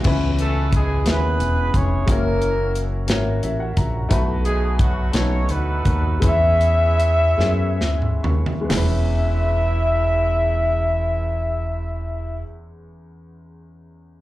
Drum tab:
CC |x-----------|------------|------------|------------|
HH |--x-x-x-x-x-|x-x-x-x-x-x-|x-x-x-x-x-x-|x-x-x-------|
SD |------o-----|------o-----|------o-----|------o-o---|
T2 |------------|------------|------------|---------o--|
FT |------------|------------|------------|----------oo|
BD |o---o-----o-|o---------o-|o---o-----o-|o-----------|

CC |------------|------------|
HH |o-----------|------------|
SD |o-----------|------------|
T2 |------------|------------|
FT |o-----------|------------|
BD |------------|------------|